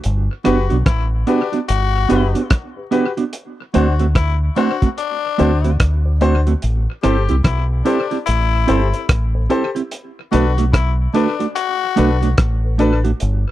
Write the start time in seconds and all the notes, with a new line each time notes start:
0.04 G1, closed hi-hat
0.44 F#1 B3 D4 F#4 G4 B4, cross-stick, closed hi-hat
0.70 B1 B3 D4 F#4, closed hi-hat
0.86 A1 E4, kick, cross-stick, closed hi-hat
1.27 B3 D4 F#4 G4 B4, closed hi-hat
1.52 B3 D4 F#4, closed hi-hat
1.68 G1 F#4, closed hi-hat
2.09 F#1 B3 D4 F#4 G4 B4, closed hi-hat
2.34 B3 D4 F#4 G4 B4, closed hi-hat
2.50 kick, cross-stick, closed hi-hat
2.76 G4 B4
2.91 B3 D4 F#4 G4 B4, closed hi-hat
3.17 B3 D4 F#4, closed hi-hat
3.33 closed hi-hat
3.74 D2 A3 C4 D4 F#4 C5, closed hi-hat
3.99 A3 C4 F#4, closed hi-hat
4.15 E4, kick, cross-stick, closed hi-hat
4.56 A3 C4 D4 F#4 C5, closed hi-hat
4.82 A3 C4 F#4, kick, closed hi-hat
4.98 D4, closed hi-hat
5.38 D2 A3 C4 D4 F#4 C5, closed hi-hat
5.64 A3 C4 F#4 C5, closed hi-hat
5.80 D2, kick, cross-stick, closed hi-hat
6.06 F#4 C5
6.21 A3 C4 D4 F#4 C5, closed hi-hat
6.47 A3 C4 F#4, closed hi-hat
6.62 A1, closed hi-hat
7.03 G1 C4 E4 G4 A4 C5, cross-stick, closed hi-hat
7.29 C2 C4 E4 G4, closed hi-hat
7.44 B1 E4, kick, cross-stick, closed hi-hat
7.85 C4 D4 E4 G4 A4 C5, closed hi-hat
8.11 C4 E4 G4, closed hi-hat
8.26 A1 E4, closed hi-hat
8.67 G1 C4 E4 G4 A4 C5, closed hi-hat
8.93 A4 C5, closed hi-hat
9.09 A1, kick, cross-stick, closed hi-hat
9.35 A4 C5
9.50 C4 E4 G4 A4 C5, closed hi-hat
9.75 C4 E4 G4, closed hi-hat
9.91 closed hi-hat
10.32 B1 A3 D4 F#4 A4 B4, closed hi-hat
10.57 A3 D4 F#4, closed hi-hat
10.72 E4, kick, cross-stick, closed hi-hat
11.14 A3 D4 F#4 A4 B4, closed hi-hat
11.39 A3 D4 F#4, closed hi-hat
11.55 F#4, closed hi-hat
11.96 B1 A3 D4 F#4 A4 B4, closed hi-hat
12.21 A3 D4 F#4, closed hi-hat
12.38 A1, kick, cross-stick, closed hi-hat
12.64 A4 B4
12.78 A3 D4 F#4 A4 B4, closed hi-hat
13.04 A3 D4 F#4, closed hi-hat
13.20 G1, closed hi-hat